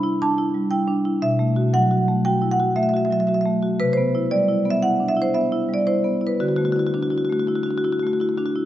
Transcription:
0.00 1.19 C3 medium
0.00 0.31 E4 medium
0.00 0.19 B5 medium
0.22 0.48 D4 soft
0.22 0.70 A5 medium
0.38 0.65 E4 soft
0.55 0.82 G3 soft
0.71 0.98 E4 soft
0.71 1.20 G5 medium
0.88 1.15 D4 soft
1.05 1.22 E4 medium
1.22 3.75 B2 medium
1.22 1.72 E5 medium
1.39 1.67 A3 soft
1.56 1.84 F#4 medium
1.73 2.01 F#3 medium
1.73 2.23 F#5 medium
1.91 2.18 F#4 soft
2.08 2.35 A3 soft
2.25 2.52 F#4 medium
2.25 2.49 G5 medium
2.42 2.59 E4 soft
2.51 2.75 F#5 medium
2.60 2.87 F#4 medium
2.76 3.03 A3 medium
2.76 2.83 E5 medium
2.83 2.89 E5 medium
2.89 2.97 E5 medium
2.94 3.21 F#4 medium
2.94 3.05 E5 medium
3.05 3.12 E5 medium
3.11 3.38 F#3 soft
3.11 3.20 E5 medium
3.20 3.27 E5 medium
3.27 3.55 F#4 soft
3.27 3.34 E5 medium
3.34 3.41 E5 medium
3.41 3.50 E5 medium
3.46 3.73 A3 soft
3.63 3.79 F#4 soft
3.80 6.36 C3 medium
3.80 3.92 B4 medium
3.93 4.29 C5 medium
3.97 4.24 B3 soft
4.15 4.41 E4 soft
4.31 4.58 G3 soft
4.31 4.68 D5 medium
4.49 4.76 E4 soft
4.65 4.93 B3 soft
4.70 4.83 E5 medium
4.83 5.10 E4 soft
4.83 5.08 F#5 medium
5.00 5.17 D4 soft
5.08 5.22 E5 medium
5.17 5.45 E4 soft
5.22 5.35 C5 medium
5.34 5.62 B3 soft
5.34 5.72 E5 medium
5.52 5.80 E4 medium
5.69 5.97 G3 soft
5.74 5.87 D5 medium
5.87 6.15 E4 soft
5.87 6.25 C5 medium
6.04 6.33 B3 soft
6.21 6.39 E4 soft
6.27 6.40 B4 medium
6.40 8.65 D3 medium
6.40 6.48 F#4 medium
6.48 6.56 F#4 medium
6.56 6.87 A3 soft
6.56 6.65 F#4 medium
6.65 6.72 F#4 medium
6.72 7.05 E4 soft
6.72 6.79 F#4 medium
6.79 6.86 F#4 medium
6.86 6.94 F#4 medium
6.94 7.23 D4 soft
6.94 7.02 F#4 medium
7.02 7.10 F#4 medium
7.10 7.41 E4 soft
7.10 7.18 F#4 medium
7.18 7.25 F#4 medium
7.25 7.33 F#4 medium
7.30 7.59 A3 soft
7.30 7.39 F#4 medium
7.39 7.47 F#4 medium
7.47 7.77 E4 soft
7.47 7.55 F#4 medium
7.55 7.63 F#4 medium
7.63 7.84 D4 soft
7.63 7.71 F#4 medium
7.71 7.78 F#4 medium
7.78 7.85 F#4 medium
7.84 8.13 E4 soft
7.84 7.92 F#4 medium
7.92 7.99 F#4 medium
7.99 8.31 A3 soft
7.99 8.07 F#4 medium
8.07 8.13 F#4 medium
8.13 8.21 F#4 medium
8.20 8.49 E4 soft
8.20 8.29 F#4 medium
8.29 8.38 F#4 medium
8.38 8.65 D4 soft
8.38 8.46 F#4 medium
8.46 8.52 F#4 medium
8.56 8.65 E4 soft

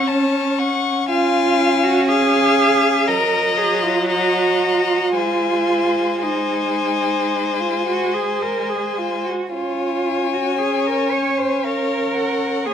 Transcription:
0.00 0.57 C#4 medium
0.05 0.95 C#4 medium
0.05 0.60 C#5 medium
0.05 0.60 A5 medium
0.58 1.08 F#5 soft
0.58 1.08 C#6 medium
1.07 3.10 C#4 medium
1.07 1.85 F4 medium
1.07 2.04 F5 medium
1.07 2.04 G#5 medium
1.84 2.10 F#4 medium
2.09 3.09 G#4 medium
2.09 3.10 F5 medium
2.09 3.10 G#5 medium
3.07 5.16 F#3 medium
3.07 3.59 A#4 medium
3.07 4.09 D#5 medium
3.07 4.09 A#5 medium
3.58 3.84 G#4 medium
3.83 4.10 F4 medium
4.09 5.16 F#4 medium
4.09 5.13 D#5 medium
4.09 5.13 A#5 medium
5.14 9.29 G#3 medium
5.14 6.24 F4 medium
5.14 6.21 C5 medium
5.14 6.20 G#5 medium
6.21 7.61 D#4 medium
6.21 9.28 C5 medium
6.21 9.27 G#5 medium
7.60 7.87 F4 medium
7.87 8.16 F#4 medium
8.14 8.43 G#4 medium
8.42 8.71 A#4 medium
8.70 8.99 G#4 medium
8.97 9.26 F4 medium
9.25 9.51 F#4 medium
9.52 12.68 C#4 soft
9.52 10.35 F4 medium
9.52 12.63 C#5 soft
9.52 11.66 G#5 soft
10.34 10.61 F#4 medium
10.59 10.88 G#4 medium
10.86 11.13 A#4 medium
11.12 11.39 C#5 medium
11.38 11.66 C5 medium
11.64 12.68 A#4 medium
11.64 12.16 F5 soft
12.15 12.68 F#5 soft
12.66 12.74 A#3 soft
12.66 12.74 G#4 medium
12.66 12.74 C#5 soft
12.66 12.74 G#5 soft

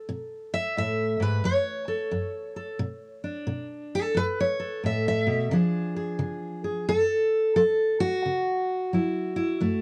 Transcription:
0.00 1.22 A4 medium
0.09 0.71 B2 medium
0.54 0.76 E5 loud
0.77 1.19 A2 medium
0.77 1.22 E5 loud
1.20 1.43 G#2 medium
1.20 1.44 B4 loud
1.44 2.07 F#2 medium
1.44 3.48 C#5 loud
1.88 2.55 A4 medium
2.11 2.74 F#2 medium
2.56 2.77 A4 medium
2.79 3.42 B2 medium
3.24 4.13 D4 soft
3.47 4.10 B2 medium
3.95 4.16 A4 loud
4.15 4.78 F#2 medium
4.15 4.39 B4 loud
4.41 4.85 C#5 loud
4.60 5.49 A4 medium
4.84 5.27 A2 medium
4.84 5.07 E5 loud
5.08 5.52 E5 loud
5.27 5.51 B2 medium
5.51 6.14 C#3 medium
5.51 6.85 F3 medium
5.51 6.85 D4 medium
5.51 5.95 G#4 medium
5.96 6.63 G#4 medium
6.19 6.82 C#3 medium
6.64 6.85 G#4 medium
6.89 7.51 F#2 medium
6.89 7.55 A4 loud
7.56 8.19 F#3 medium
7.56 7.99 A4 medium
8.00 9.82 F#4 loud
8.26 8.88 C#3 medium
8.93 9.56 F#3 medium
8.93 9.36 E4 soft
9.36 9.82 E4 medium
9.60 9.82 F#2 medium
9.60 9.82 A3 medium

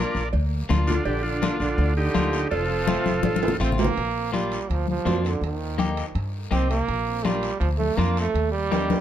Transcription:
0.00 0.22 A#3 medium
0.00 0.29 A#3 medium
0.00 0.22 D4 medium
0.00 0.22 F4 medium
0.00 0.29 A#4 medium
0.00 0.29 D5 loud
0.15 0.29 A#1 medium
0.15 short guiro medium
0.33 0.62 D2 loud
0.33 cowbell medium
0.33 high conga soft
0.33 long guiro medium
0.69 0.99 D2 medium
0.69 0.95 A#3 medium
0.69 0.95 D4 medium
0.69 0.95 F4 loud
0.69 high conga medium
0.69 low conga medium
0.69 short guiro medium
0.87 1.05 D3 medium
0.87 1.04 D4 medium
0.87 1.04 F4 medium
0.87 low conga medium
0.87 short guiro medium
1.05 1.49 A#1 medium
1.05 1.23 D3 medium
1.05 1.21 D4 medium
1.05 1.22 G4 medium
1.05 cowbell medium
1.05 long guiro medium
1.22 1.58 D3 medium
1.22 1.57 D4 medium
1.22 1.58 F4 medium
1.22 high conga soft
1.42 1.68 A#3 medium
1.42 1.68 D4 medium
1.42 1.68 F4 medium
1.42 high conga medium
1.42 short guiro medium
1.59 1.75 A#1 medium
1.59 1.95 D3 medium
1.59 1.94 D4 medium
1.59 1.94 F4 medium
1.59 short guiro medium
1.78 2.07 D2 loud
1.78 cowbell medium
1.78 high conga soft
1.78 long guiro medium
1.96 2.47 D3 medium
1.96 2.48 D#4 medium
1.96 2.48 G4 medium
2.14 2.44 D2 medium
2.14 2.40 A#3 medium
2.14 2.40 D4 medium
2.14 2.40 F4 medium
2.14 high conga medium
2.14 short guiro medium
2.33 short guiro medium
2.50 2.95 F1 medium
2.50 3.57 F3 loud
2.50 3.57 F4 medium
2.50 3.56 A4 loud
2.50 cowbell loud
2.50 long guiro medium
2.70 high conga soft
2.87 3.13 A3 medium
2.87 3.13 C4 medium
2.87 3.14 F4 medium
2.87 high conga loud
2.87 short guiro medium
3.06 3.21 F1 medium
3.06 high conga medium
3.06 short guiro medium
3.23 3.53 A1 medium
3.23 cowbell medium
3.23 high conga loud
3.23 long guiro medium
3.36 high conga medium
3.43 high timbale loud
3.48 low conga medium
3.60 3.89 A1 medium
3.60 3.86 A3 medium
3.60 3.86 C4 medium
3.60 3.70 C4 loud
3.60 3.86 F4 loud
3.60 short guiro medium
3.72 low conga medium
3.78 4.30 A#3 loud
3.78 low timbale medium
3.78 short guiro medium
3.85 low conga loud
3.97 4.56 A#1 medium
3.97 high timbale medium
3.97 long guiro medium
4.32 4.72 G3 medium
4.32 4.59 A#3 medium
4.32 4.59 D4 soft
4.32 4.59 F4 medium
4.32 high conga medium
4.32 high timbale medium
4.32 short guiro medium
4.52 high timbale medium
4.52 short guiro medium
4.70 4.99 D2 medium
4.70 4.89 F3 medium
4.70 high timbale medium
4.70 long guiro medium
4.88 5.28 F3 medium
4.88 high conga medium
5.05 5.35 F2 loud
5.05 5.32 A#3 medium
5.05 5.32 D4 medium
5.05 5.32 F4 medium
5.05 high conga medium
5.05 high timbale medium
5.05 low timbale medium
5.05 short guiro medium
5.25 5.44 D3 medium
5.25 high timbale medium
5.25 short guiro medium
5.41 6.01 D#2 medium
5.41 6.13 D#3 medium
5.41 high timbale medium
5.41 long guiro medium
5.78 6.05 A#3 medium
5.78 6.05 D#4 medium
5.78 6.05 G4 medium
5.78 high conga medium
5.78 high timbale medium
5.78 short guiro medium
5.97 high timbale medium
5.97 short guiro medium
6.15 6.45 G2 medium
6.15 high timbale medium
6.15 long guiro medium
6.51 6.81 C2 medium
6.51 6.77 A#3 medium
6.51 6.70 C4 medium
6.51 6.78 D#4 medium
6.51 6.78 G4 medium
6.51 high conga medium
6.51 high timbale medium
6.51 short guiro medium
6.70 7.27 A#3 loud
6.70 high timbale medium
6.70 short guiro medium
6.88 7.47 A#1 medium
6.88 high timbale medium
6.88 long guiro medium
7.25 7.59 G3 medium
7.25 7.51 A#3 medium
7.25 7.51 D4 medium
7.25 7.51 F4 medium
7.25 high conga medium
7.25 high timbale medium
7.25 short guiro medium
7.43 high timbale medium
7.43 short guiro medium
7.60 7.91 D2 medium
7.60 7.69 F3 medium
7.60 high timbale medium
7.60 long guiro medium
7.78 7.98 A3 medium
7.78 high conga medium
7.97 8.27 F2 medium
7.97 8.20 A#3 medium
7.97 8.24 A#3 medium
7.97 8.24 D4 medium
7.97 8.24 F4 medium
7.97 high conga medium
7.97 high timbale medium
7.97 short guiro medium
8.17 8.50 A3 medium
8.17 high timbale medium
8.17 short guiro medium
8.34 8.93 D#2 medium
8.34 high timbale medium
8.34 long guiro medium
8.52 9.01 G3 loud
8.71 8.97 A#3 medium
8.71 8.97 D#4 medium
8.71 8.97 G4 medium
8.71 high conga medium
8.71 high timbale medium
8.71 short guiro medium
8.90 high conga medium
8.90 high timbale medium
8.90 short guiro medium

